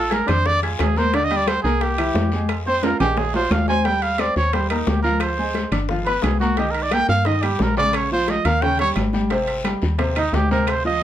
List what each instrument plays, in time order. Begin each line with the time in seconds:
Already playing: fm bass A#1, trumpet A4
0.10 grand piano G#4 G#5 G#6, trumpet A#4, high bongo, high conga, high timbale, low timbale, short guiro
0.26 fm bass F2, grand piano D4 D5 D6, trumpet C5, high bongo, high conga, low conga, high timbale, short guiro, claves
0.46 trumpet D5, high bongo, high conga, low conga, long guiro
0.63 trumpet F4, grand piano G#4 G#5 G#6, high bongo, high conga, high timbale
0.79 fm bass D#2, trumpet G#4, high bongo, low bongo, high conga, high timbale, low timbale, short guiro, claves
0.96 grand piano A#3 A#4 A#5, trumpet C5, high conga, short guiro
1.13 grand piano D3 D4 D5, trumpet D5, high bongo, high conga, high timbale, long guiro
1.24 trumpet D#5
1.30 grand piano G3 G4 G5, high bongo, high conga, high timbale
1.37 trumpet D5
1.47 trumpet C5, high bongo, high conga, high timbale, low timbale, short guiro, claves
1.63 fm bass C2, grand piano A#3 A#4 A#5, trumpet G#4, high bongo, high conga, short guiro
1.81 trumpet G4, high bongo, high conga, high timbale, long guiro
1.98 grand piano E3 E4 E5, high bongo, high conga, high timbale, claves
2.14 fm bass F2, high bongo, low bongo, high conga, low timbale, short guiro
2.32 grand piano G#3 G#4 G#5, high conga, short guiro
2.49 high bongo, high conga, high timbale, long guiro, claves
2.66 grand piano C4 C5 C6, trumpet C5, high bongo, high conga
2.83 grand piano F4 F5 F6, trumpet A#4, high bongo, high conga, high timbale, short guiro
3.00 fm bass A#1, grand piano G#3 G#4 G#5, trumpet G4, high bongo, high conga, low conga, high timbale, short guiro, claves
3.17 trumpet G#4, high bongo, high conga, low conga, low timbale, long guiro
3.34 grand piano F4 F5 F6, trumpet C5, high bongo, high conga, low timbale
3.50 fm bass D#2, trumpet F5, high bongo, low bongo, high conga, low timbale, short guiro, claves
3.68 grand piano C4 C5 C6, trumpet G#5, high conga, low timbale, short guiro
3.85 grand piano G3 G4 G5, trumpet G5, high bongo, high conga, high timbale, long guiro
4.02 trumpet F5, high bongo, high conga, high timbale
4.18 grand piano C4 C5 C6, trumpet D5, high bongo, high conga, high timbale, low timbale, short guiro, claves
4.36 fm bass D#2, trumpet C#5, high bongo, high conga, short guiro
4.53 grand piano G3 G4 G5, trumpet C5, high bongo, high conga, high timbale, long guiro
4.70 grand piano A#3 A#4 A#5, trumpet D#4, high bongo, high conga, high timbale, claves
4.87 fm bass D2, trumpet G4, high bongo, low bongo, high conga, low timbale, short guiro
5.03 grand piano F3 F4 F5, trumpet A#4, high conga, short guiro
5.20 trumpet C5, high bongo, high conga, high timbale, long guiro, claves
5.37 grand piano G#3 G#4 G#5, high bongo, high conga
5.54 high bongo, high conga, high timbale, low timbale, short guiro
5.72 fm bass G1, grand piano D4 D5 D6, high bongo, high conga, low conga, high timbale, short guiro, claves
5.89 grand piano F3 F4 F5, high bongo, high conga, low conga, long guiro
6.06 grand piano B3 B4 B5, trumpet B4, high bongo, high conga, high timbale
6.22 fm bass C2, trumpet G#4, high bongo, low bongo, high conga, high timbale, low timbale, short guiro, claves
6.40 grand piano A#3 A#4 A#5, trumpet F#4, high conga, short guiro
6.57 grand piano D#3 D#4 D#5, trumpet G4, high bongo, high conga, high timbale, long guiro
6.71 trumpet A#4, high bongo, high conga, high timbale
6.82 trumpet D5
6.91 grand piano A#3 A#4 A#5, trumpet G5, high bongo, high conga, high timbale, low timbale, short guiro, claves
7.08 fm bass G2, trumpet F5, high bongo, high conga, short guiro
7.25 grand piano D#3 D#4 D#5, trumpet D#5, high bongo, high conga, high timbale, long guiro
7.43 grand piano G3 G4 G5, trumpet G4, high bongo, high conga, high timbale, claves
7.59 fm bass A#1, trumpet A#4, high bongo, low bongo, high conga, low timbale, short guiro
7.77 grand piano C#3 C#4 C#5, trumpet D5, high conga, short guiro
7.93 trumpet C#5, high bongo, high timbale, long guiro, claves
8.11 grand piano F3 F4 F5, trumpet C5, high bongo, high conga
8.28 trumpet D#5, high bongo, high conga, high timbale, low timbale, short guiro
8.45 fm bass D#2, grand piano A#3 A#4 A#5, trumpet F5, high bongo, high conga, low conga, high timbale, short guiro, claves
8.62 grand piano C#3 C#4 C#5, trumpet G5, high bongo, high conga, low conga, long guiro
8.79 grand piano G3 G4 G5, trumpet C#5, high bongo, high conga, high timbale
8.96 fm bass G#1, high bongo, high conga, high timbale, low timbale, short guiro, claves
9.13 grand piano G3 G4 G5, low bongo, high conga, short guiro
9.30 grand piano C3 C4 C5, high bongo, high conga, high timbale, long guiro
9.48 high bongo, high conga, high timbale
9.64 grand piano G3 G4 G5, high bongo, high conga, high timbale, low timbale, short guiro, claves
9.82 fm bass D#2, high bongo, high conga, short guiro
9.98 grand piano C3 C4 C5, high bongo, high conga, high timbale, long guiro
10.16 grand piano D#3 D#4 D#5, trumpet D#4, high bongo, high conga, high timbale, claves
10.33 fm bass D2, trumpet G4, high bongo, low bongo, high conga, low timbale, short guiro
10.50 grand piano C3 C4 C5, trumpet A#4, high conga, short guiro
10.67 trumpet C5, high bongo, high timbale, long guiro, claves
10.85 grand piano F3 F4 F5, trumpet D#5, high bongo, high conga